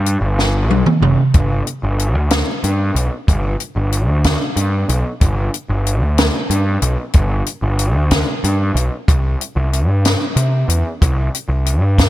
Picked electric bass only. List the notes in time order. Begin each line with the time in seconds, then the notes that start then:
Already playing: G2
0.21 G1
0.68 B1
1.02 F#1
1.35 G1
1.83 G1
2.15 D2
2.64 G2
2.95 B1
3.28 G1
3.76 G1
4.08 D2
4.56 G2
4.89 B1
5.21 G1
5.69 G1
6.02 D2
6.50 G2
6.82 B1
7.15 G1
7.62 G1
7.95 D2
8.44 G2
8.75 B1
9.09 C2
9.56 C2
9.87 G2
10.36 C3
10.68 E2
11.02 C2
11.48 C2
11.81 G2